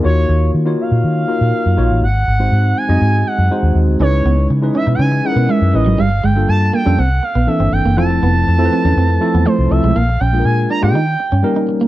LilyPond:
<<
  \new Staff \with { instrumentName = "Analog synth lead" } { \time 4/4 \key dis \phrygian \tempo 4 = 121 cis''4 r8 eis''2~ eis''8 | fis''4. gis''4 fis''4 r8 | cis''4 r8 e''16. g''32 gis''8 fis''8 e''8 dis''8 | f''8 g''8 a''8 g''8 fis''8 eis''8 e''8 g''8 |
a''2. c''8 e''8 | eis''8 g''8 gis''8 ais''16 g''4.~ g''16 r8 | }
  \new Staff \with { instrumentName = "Tine electric piano" } { \time 4/4 \key dis \phrygian <ais dis' eis' fis' cis''>4 r16 <ais dis' eis' fis' cis''>4 r16 <ais dis' eis' fis' ais'>8. r16 <ais dis' eis' fis' cis''>8 | r8. <gis bis dis' fis' bis'>8. r16 <gis bis dis' fis' dis''>4 r16 <gis bis dis' fis' bis'>8. r16 | <gis cis' dis' e' b'>4 r16 <gis cis' dis' e' b'>4 r16 <gis cis' dis' e' gis' ais'>8. r16 <gis cis' dis' e' b'>8 | r8. <g bes d' f' a'>8. r16 <g bes d' f' a'>16 r4 <e bes c' d' a'>8. r16 |
<f a c' e' a'>4 r16 <f a c' e' a' b'>4 r16 <f a c' e' a'>8. r16 <f a c' e' a'>8 | r8. <gis ais d' eis' gis' ais'>8. r16 <gis ais d' eis' g'>16 r4 <g ais cis' dis' ais'>8. r16 | }
  \new Staff \with { instrumentName = "Clean electric guitar" } { \time 4/4 \key dis \phrygian r1 | r1 | cis'16 r16 b16 r8. cis'16 dis'16 cis'16 r8 b16 gis16 r8 fis16 | g16 r16 gis16 r8. bes16 cis'16 c'16 r8 b16 r16 c'16 r16 bes16 |
f'16 r16 b16 r8. c'16 cis'16 c'16 r8 b16 a16 r8 gis16 | ais16 r16 cis'16 r8. d'16 eis'16 dis'16 r8 cis'16 r16 dis'16 r16 ais16 | }
  \new Staff \with { instrumentName = "Fingered electric bass" } { \clef bass \time 4/4 \key dis \phrygian dis,8 dis,8 dis8 r16 ais,16 dis8 r16 ais,16 r16 fis,16 ais,,16 a,,16 | gis,,8 gis,,8 gis,8 r16 fis,16 gis,8 r16 fis,16 r16 dis,16 dis,16 d,16 | cis,8 cis,8 cis8 r16 b,16 cis8 r16 b,16 r16 fis,16 a,,16 gis,,16 | g,,8 g,,8 g,8 r16 f,16 c,8 r16 bes,,16 r16 g,,16 g,,16 fis,,16 |
f,,8 f,,8 f,8 r16 e,16 f,8 r16 e,16 r16 c,16 c,16 b,,16 | ais,,8 ais,,8 ais,8 r16 gis,16 dis8 r16 g,16 r4 | }
>>